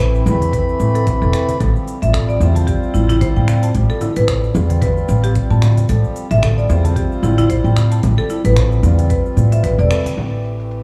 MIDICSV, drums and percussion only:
0, 0, Header, 1, 3, 480
1, 0, Start_track
1, 0, Tempo, 535714
1, 1437, Time_signature, 4, 2, 24, 8
1, 9705, End_track
2, 0, Start_track
2, 0, Title_t, "Cajon"
2, 233, Note_on_c, 9, 38, 46
2, 322, Note_off_c, 9, 38, 0
2, 371, Note_on_c, 9, 36, 80
2, 461, Note_off_c, 9, 36, 0
2, 714, Note_on_c, 9, 38, 74
2, 804, Note_off_c, 9, 38, 0
2, 854, Note_on_c, 9, 38, 69
2, 943, Note_off_c, 9, 38, 0
2, 1198, Note_on_c, 9, 38, 53
2, 1288, Note_off_c, 9, 38, 0
2, 1332, Note_on_c, 9, 36, 77
2, 1341, Note_on_c, 9, 38, 53
2, 1422, Note_off_c, 9, 36, 0
2, 1431, Note_off_c, 9, 38, 0
2, 2292, Note_on_c, 9, 36, 84
2, 2382, Note_off_c, 9, 36, 0
2, 2771, Note_on_c, 9, 36, 77
2, 2774, Note_on_c, 9, 38, 67
2, 2861, Note_off_c, 9, 36, 0
2, 2864, Note_off_c, 9, 38, 0
2, 3122, Note_on_c, 9, 38, 58
2, 3126, Note_on_c, 9, 36, 82
2, 3212, Note_off_c, 9, 38, 0
2, 3215, Note_off_c, 9, 36, 0
2, 4075, Note_on_c, 9, 38, 49
2, 4164, Note_off_c, 9, 38, 0
2, 4208, Note_on_c, 9, 36, 91
2, 4298, Note_off_c, 9, 36, 0
2, 4556, Note_on_c, 9, 38, 75
2, 4645, Note_off_c, 9, 38, 0
2, 4698, Note_on_c, 9, 38, 74
2, 4787, Note_off_c, 9, 38, 0
2, 5176, Note_on_c, 9, 36, 78
2, 5265, Note_off_c, 9, 36, 0
2, 6131, Note_on_c, 9, 36, 82
2, 6221, Note_off_c, 9, 36, 0
2, 6610, Note_on_c, 9, 38, 72
2, 6617, Note_on_c, 9, 36, 74
2, 6699, Note_off_c, 9, 38, 0
2, 6706, Note_off_c, 9, 36, 0
2, 6954, Note_on_c, 9, 38, 57
2, 6964, Note_on_c, 9, 36, 76
2, 7043, Note_off_c, 9, 38, 0
2, 7053, Note_off_c, 9, 36, 0
2, 7917, Note_on_c, 9, 38, 59
2, 8007, Note_off_c, 9, 38, 0
2, 8058, Note_on_c, 9, 36, 79
2, 8147, Note_off_c, 9, 36, 0
2, 8395, Note_on_c, 9, 38, 67
2, 8485, Note_off_c, 9, 38, 0
2, 8531, Note_on_c, 9, 38, 77
2, 8620, Note_off_c, 9, 38, 0
2, 9012, Note_on_c, 9, 36, 87
2, 9015, Note_on_c, 9, 38, 68
2, 9102, Note_off_c, 9, 36, 0
2, 9104, Note_off_c, 9, 38, 0
2, 9705, End_track
3, 0, Start_track
3, 0, Title_t, "Drums"
3, 0, Note_on_c, 9, 26, 77
3, 0, Note_on_c, 9, 36, 101
3, 0, Note_on_c, 9, 46, 52
3, 0, Note_on_c, 9, 82, 41
3, 87, Note_off_c, 9, 36, 0
3, 88, Note_off_c, 9, 26, 0
3, 88, Note_off_c, 9, 46, 0
3, 90, Note_off_c, 9, 82, 0
3, 135, Note_on_c, 9, 82, 22
3, 225, Note_off_c, 9, 82, 0
3, 238, Note_on_c, 9, 64, 77
3, 240, Note_on_c, 9, 82, 75
3, 328, Note_off_c, 9, 64, 0
3, 330, Note_off_c, 9, 82, 0
3, 376, Note_on_c, 9, 46, 40
3, 378, Note_on_c, 9, 82, 33
3, 466, Note_off_c, 9, 46, 0
3, 468, Note_off_c, 9, 82, 0
3, 477, Note_on_c, 9, 36, 105
3, 479, Note_on_c, 9, 46, 53
3, 481, Note_on_c, 9, 82, 43
3, 567, Note_off_c, 9, 36, 0
3, 568, Note_off_c, 9, 46, 0
3, 570, Note_off_c, 9, 82, 0
3, 617, Note_on_c, 9, 82, 21
3, 707, Note_off_c, 9, 82, 0
3, 717, Note_on_c, 9, 82, 76
3, 807, Note_off_c, 9, 82, 0
3, 854, Note_on_c, 9, 46, 37
3, 856, Note_on_c, 9, 82, 29
3, 943, Note_off_c, 9, 46, 0
3, 945, Note_off_c, 9, 82, 0
3, 957, Note_on_c, 9, 46, 50
3, 957, Note_on_c, 9, 64, 72
3, 958, Note_on_c, 9, 36, 101
3, 959, Note_on_c, 9, 82, 43
3, 1047, Note_off_c, 9, 36, 0
3, 1047, Note_off_c, 9, 46, 0
3, 1047, Note_off_c, 9, 64, 0
3, 1049, Note_off_c, 9, 82, 0
3, 1096, Note_on_c, 9, 82, 20
3, 1185, Note_off_c, 9, 82, 0
3, 1195, Note_on_c, 9, 26, 69
3, 1197, Note_on_c, 9, 82, 71
3, 1285, Note_off_c, 9, 26, 0
3, 1287, Note_off_c, 9, 82, 0
3, 1332, Note_on_c, 9, 46, 38
3, 1334, Note_on_c, 9, 82, 30
3, 1421, Note_off_c, 9, 46, 0
3, 1423, Note_off_c, 9, 82, 0
3, 1438, Note_on_c, 9, 36, 92
3, 1438, Note_on_c, 9, 46, 47
3, 1438, Note_on_c, 9, 64, 73
3, 1440, Note_on_c, 9, 82, 41
3, 1528, Note_off_c, 9, 36, 0
3, 1528, Note_off_c, 9, 46, 0
3, 1528, Note_off_c, 9, 64, 0
3, 1530, Note_off_c, 9, 82, 0
3, 1577, Note_on_c, 9, 82, 20
3, 1667, Note_off_c, 9, 82, 0
3, 1681, Note_on_c, 9, 46, 27
3, 1683, Note_on_c, 9, 82, 71
3, 1771, Note_off_c, 9, 46, 0
3, 1773, Note_off_c, 9, 82, 0
3, 1816, Note_on_c, 9, 46, 37
3, 1818, Note_on_c, 9, 82, 29
3, 1905, Note_off_c, 9, 46, 0
3, 1907, Note_off_c, 9, 82, 0
3, 1918, Note_on_c, 9, 26, 71
3, 1918, Note_on_c, 9, 46, 54
3, 1919, Note_on_c, 9, 36, 101
3, 1920, Note_on_c, 9, 82, 39
3, 2008, Note_off_c, 9, 26, 0
3, 2008, Note_off_c, 9, 36, 0
3, 2008, Note_off_c, 9, 46, 0
3, 2010, Note_off_c, 9, 82, 0
3, 2057, Note_on_c, 9, 82, 22
3, 2146, Note_off_c, 9, 82, 0
3, 2159, Note_on_c, 9, 64, 78
3, 2161, Note_on_c, 9, 82, 77
3, 2248, Note_off_c, 9, 64, 0
3, 2250, Note_off_c, 9, 82, 0
3, 2294, Note_on_c, 9, 46, 41
3, 2297, Note_on_c, 9, 82, 34
3, 2384, Note_off_c, 9, 46, 0
3, 2386, Note_off_c, 9, 82, 0
3, 2398, Note_on_c, 9, 46, 49
3, 2399, Note_on_c, 9, 36, 102
3, 2400, Note_on_c, 9, 82, 45
3, 2487, Note_off_c, 9, 46, 0
3, 2488, Note_off_c, 9, 36, 0
3, 2490, Note_off_c, 9, 82, 0
3, 2537, Note_on_c, 9, 82, 20
3, 2627, Note_off_c, 9, 82, 0
3, 2639, Note_on_c, 9, 82, 76
3, 2729, Note_off_c, 9, 82, 0
3, 2774, Note_on_c, 9, 46, 41
3, 2776, Note_on_c, 9, 82, 30
3, 2864, Note_off_c, 9, 46, 0
3, 2866, Note_off_c, 9, 82, 0
3, 2879, Note_on_c, 9, 36, 100
3, 2879, Note_on_c, 9, 46, 51
3, 2879, Note_on_c, 9, 64, 77
3, 2881, Note_on_c, 9, 82, 43
3, 2968, Note_off_c, 9, 36, 0
3, 2968, Note_off_c, 9, 46, 0
3, 2968, Note_off_c, 9, 64, 0
3, 2971, Note_off_c, 9, 82, 0
3, 3016, Note_on_c, 9, 82, 20
3, 3106, Note_off_c, 9, 82, 0
3, 3117, Note_on_c, 9, 26, 74
3, 3119, Note_on_c, 9, 82, 73
3, 3207, Note_off_c, 9, 26, 0
3, 3209, Note_off_c, 9, 82, 0
3, 3252, Note_on_c, 9, 46, 43
3, 3254, Note_on_c, 9, 82, 32
3, 3342, Note_off_c, 9, 46, 0
3, 3344, Note_off_c, 9, 82, 0
3, 3356, Note_on_c, 9, 46, 54
3, 3358, Note_on_c, 9, 36, 85
3, 3358, Note_on_c, 9, 82, 39
3, 3446, Note_off_c, 9, 46, 0
3, 3448, Note_off_c, 9, 36, 0
3, 3448, Note_off_c, 9, 82, 0
3, 3492, Note_on_c, 9, 82, 20
3, 3581, Note_off_c, 9, 82, 0
3, 3593, Note_on_c, 9, 46, 29
3, 3593, Note_on_c, 9, 64, 77
3, 3595, Note_on_c, 9, 82, 70
3, 3682, Note_off_c, 9, 46, 0
3, 3682, Note_off_c, 9, 64, 0
3, 3684, Note_off_c, 9, 82, 0
3, 3729, Note_on_c, 9, 46, 44
3, 3731, Note_on_c, 9, 82, 31
3, 3819, Note_off_c, 9, 46, 0
3, 3821, Note_off_c, 9, 82, 0
3, 3835, Note_on_c, 9, 26, 73
3, 3835, Note_on_c, 9, 46, 55
3, 3837, Note_on_c, 9, 82, 44
3, 3839, Note_on_c, 9, 36, 95
3, 3925, Note_off_c, 9, 26, 0
3, 3925, Note_off_c, 9, 46, 0
3, 3927, Note_off_c, 9, 82, 0
3, 3928, Note_off_c, 9, 36, 0
3, 3974, Note_on_c, 9, 82, 21
3, 4064, Note_off_c, 9, 82, 0
3, 4077, Note_on_c, 9, 82, 68
3, 4166, Note_off_c, 9, 82, 0
3, 4213, Note_on_c, 9, 46, 45
3, 4215, Note_on_c, 9, 82, 32
3, 4302, Note_off_c, 9, 46, 0
3, 4304, Note_off_c, 9, 82, 0
3, 4318, Note_on_c, 9, 36, 95
3, 4318, Note_on_c, 9, 46, 49
3, 4318, Note_on_c, 9, 64, 80
3, 4321, Note_on_c, 9, 82, 39
3, 4408, Note_off_c, 9, 36, 0
3, 4408, Note_off_c, 9, 46, 0
3, 4408, Note_off_c, 9, 64, 0
3, 4410, Note_off_c, 9, 82, 0
3, 4457, Note_on_c, 9, 82, 21
3, 4546, Note_off_c, 9, 82, 0
3, 4559, Note_on_c, 9, 82, 76
3, 4649, Note_off_c, 9, 82, 0
3, 4693, Note_on_c, 9, 46, 39
3, 4695, Note_on_c, 9, 82, 28
3, 4783, Note_off_c, 9, 46, 0
3, 4785, Note_off_c, 9, 82, 0
3, 4797, Note_on_c, 9, 46, 50
3, 4799, Note_on_c, 9, 36, 97
3, 4799, Note_on_c, 9, 82, 40
3, 4886, Note_off_c, 9, 46, 0
3, 4888, Note_off_c, 9, 36, 0
3, 4888, Note_off_c, 9, 82, 0
3, 4937, Note_on_c, 9, 82, 20
3, 5026, Note_off_c, 9, 82, 0
3, 5037, Note_on_c, 9, 26, 71
3, 5037, Note_on_c, 9, 64, 76
3, 5039, Note_on_c, 9, 82, 72
3, 5126, Note_off_c, 9, 26, 0
3, 5126, Note_off_c, 9, 64, 0
3, 5128, Note_off_c, 9, 82, 0
3, 5174, Note_on_c, 9, 46, 39
3, 5176, Note_on_c, 9, 82, 30
3, 5264, Note_off_c, 9, 46, 0
3, 5266, Note_off_c, 9, 82, 0
3, 5278, Note_on_c, 9, 46, 57
3, 5279, Note_on_c, 9, 36, 91
3, 5280, Note_on_c, 9, 82, 41
3, 5367, Note_off_c, 9, 46, 0
3, 5368, Note_off_c, 9, 36, 0
3, 5369, Note_off_c, 9, 82, 0
3, 5415, Note_on_c, 9, 82, 21
3, 5505, Note_off_c, 9, 82, 0
3, 5519, Note_on_c, 9, 46, 30
3, 5521, Note_on_c, 9, 82, 75
3, 5609, Note_off_c, 9, 46, 0
3, 5611, Note_off_c, 9, 82, 0
3, 5655, Note_on_c, 9, 46, 40
3, 5657, Note_on_c, 9, 82, 31
3, 5745, Note_off_c, 9, 46, 0
3, 5747, Note_off_c, 9, 82, 0
3, 5758, Note_on_c, 9, 36, 95
3, 5761, Note_on_c, 9, 26, 74
3, 5761, Note_on_c, 9, 46, 56
3, 5761, Note_on_c, 9, 64, 77
3, 5763, Note_on_c, 9, 82, 39
3, 5848, Note_off_c, 9, 36, 0
3, 5850, Note_off_c, 9, 26, 0
3, 5850, Note_off_c, 9, 46, 0
3, 5850, Note_off_c, 9, 64, 0
3, 5852, Note_off_c, 9, 82, 0
3, 5900, Note_on_c, 9, 82, 21
3, 5990, Note_off_c, 9, 82, 0
3, 6001, Note_on_c, 9, 82, 74
3, 6090, Note_off_c, 9, 82, 0
3, 6137, Note_on_c, 9, 46, 44
3, 6139, Note_on_c, 9, 82, 33
3, 6226, Note_off_c, 9, 46, 0
3, 6229, Note_off_c, 9, 82, 0
3, 6238, Note_on_c, 9, 36, 95
3, 6240, Note_on_c, 9, 46, 51
3, 6242, Note_on_c, 9, 82, 38
3, 6328, Note_off_c, 9, 36, 0
3, 6330, Note_off_c, 9, 46, 0
3, 6332, Note_off_c, 9, 82, 0
3, 6379, Note_on_c, 9, 82, 20
3, 6468, Note_off_c, 9, 82, 0
3, 6480, Note_on_c, 9, 64, 82
3, 6482, Note_on_c, 9, 82, 74
3, 6570, Note_off_c, 9, 64, 0
3, 6572, Note_off_c, 9, 82, 0
3, 6615, Note_on_c, 9, 46, 39
3, 6617, Note_on_c, 9, 82, 30
3, 6704, Note_off_c, 9, 46, 0
3, 6706, Note_off_c, 9, 82, 0
3, 6718, Note_on_c, 9, 36, 91
3, 6718, Note_on_c, 9, 46, 55
3, 6720, Note_on_c, 9, 82, 41
3, 6807, Note_off_c, 9, 36, 0
3, 6808, Note_off_c, 9, 46, 0
3, 6810, Note_off_c, 9, 82, 0
3, 6858, Note_on_c, 9, 82, 21
3, 6947, Note_off_c, 9, 82, 0
3, 6958, Note_on_c, 9, 26, 68
3, 6960, Note_on_c, 9, 82, 69
3, 7047, Note_off_c, 9, 26, 0
3, 7049, Note_off_c, 9, 82, 0
3, 7094, Note_on_c, 9, 46, 46
3, 7096, Note_on_c, 9, 82, 30
3, 7183, Note_off_c, 9, 46, 0
3, 7185, Note_off_c, 9, 82, 0
3, 7196, Note_on_c, 9, 46, 56
3, 7196, Note_on_c, 9, 64, 80
3, 7198, Note_on_c, 9, 36, 93
3, 7198, Note_on_c, 9, 82, 42
3, 7286, Note_off_c, 9, 46, 0
3, 7286, Note_off_c, 9, 64, 0
3, 7287, Note_off_c, 9, 36, 0
3, 7288, Note_off_c, 9, 82, 0
3, 7333, Note_on_c, 9, 82, 21
3, 7423, Note_off_c, 9, 82, 0
3, 7434, Note_on_c, 9, 46, 30
3, 7436, Note_on_c, 9, 82, 76
3, 7524, Note_off_c, 9, 46, 0
3, 7526, Note_off_c, 9, 82, 0
3, 7569, Note_on_c, 9, 46, 45
3, 7571, Note_on_c, 9, 82, 31
3, 7658, Note_off_c, 9, 46, 0
3, 7661, Note_off_c, 9, 82, 0
3, 7674, Note_on_c, 9, 26, 79
3, 7674, Note_on_c, 9, 46, 58
3, 7676, Note_on_c, 9, 82, 41
3, 7677, Note_on_c, 9, 36, 102
3, 7764, Note_off_c, 9, 26, 0
3, 7764, Note_off_c, 9, 46, 0
3, 7766, Note_off_c, 9, 36, 0
3, 7766, Note_off_c, 9, 82, 0
3, 7812, Note_on_c, 9, 82, 22
3, 7902, Note_off_c, 9, 82, 0
3, 7915, Note_on_c, 9, 46, 34
3, 7915, Note_on_c, 9, 64, 81
3, 7917, Note_on_c, 9, 82, 75
3, 8005, Note_off_c, 9, 46, 0
3, 8005, Note_off_c, 9, 64, 0
3, 8007, Note_off_c, 9, 82, 0
3, 8053, Note_on_c, 9, 46, 44
3, 8055, Note_on_c, 9, 82, 32
3, 8142, Note_off_c, 9, 46, 0
3, 8144, Note_off_c, 9, 82, 0
3, 8155, Note_on_c, 9, 46, 56
3, 8156, Note_on_c, 9, 36, 98
3, 8157, Note_on_c, 9, 82, 40
3, 8245, Note_off_c, 9, 46, 0
3, 8246, Note_off_c, 9, 36, 0
3, 8247, Note_off_c, 9, 82, 0
3, 8294, Note_on_c, 9, 82, 21
3, 8383, Note_off_c, 9, 82, 0
3, 8397, Note_on_c, 9, 46, 32
3, 8399, Note_on_c, 9, 82, 73
3, 8487, Note_off_c, 9, 46, 0
3, 8489, Note_off_c, 9, 82, 0
3, 8533, Note_on_c, 9, 46, 42
3, 8535, Note_on_c, 9, 82, 29
3, 8622, Note_off_c, 9, 46, 0
3, 8624, Note_off_c, 9, 82, 0
3, 8635, Note_on_c, 9, 46, 57
3, 8635, Note_on_c, 9, 64, 75
3, 8637, Note_on_c, 9, 36, 102
3, 8637, Note_on_c, 9, 82, 43
3, 8725, Note_off_c, 9, 46, 0
3, 8725, Note_off_c, 9, 64, 0
3, 8726, Note_off_c, 9, 36, 0
3, 8727, Note_off_c, 9, 82, 0
3, 8775, Note_on_c, 9, 82, 21
3, 8865, Note_off_c, 9, 82, 0
3, 8876, Note_on_c, 9, 26, 75
3, 8878, Note_on_c, 9, 82, 67
3, 8966, Note_off_c, 9, 26, 0
3, 8968, Note_off_c, 9, 82, 0
3, 9016, Note_on_c, 9, 46, 47
3, 9018, Note_on_c, 9, 82, 30
3, 9106, Note_off_c, 9, 46, 0
3, 9108, Note_off_c, 9, 82, 0
3, 9120, Note_on_c, 9, 46, 46
3, 9120, Note_on_c, 9, 64, 68
3, 9122, Note_on_c, 9, 82, 35
3, 9210, Note_off_c, 9, 46, 0
3, 9210, Note_off_c, 9, 64, 0
3, 9212, Note_off_c, 9, 82, 0
3, 9260, Note_on_c, 9, 82, 19
3, 9350, Note_off_c, 9, 82, 0
3, 9360, Note_on_c, 9, 46, 28
3, 9362, Note_on_c, 9, 82, 63
3, 9449, Note_off_c, 9, 46, 0
3, 9451, Note_off_c, 9, 82, 0
3, 9496, Note_on_c, 9, 46, 37
3, 9498, Note_on_c, 9, 82, 28
3, 9585, Note_off_c, 9, 46, 0
3, 9587, Note_off_c, 9, 82, 0
3, 9600, Note_on_c, 9, 46, 50
3, 9602, Note_on_c, 9, 82, 39
3, 9689, Note_off_c, 9, 46, 0
3, 9691, Note_off_c, 9, 82, 0
3, 9705, End_track
0, 0, End_of_file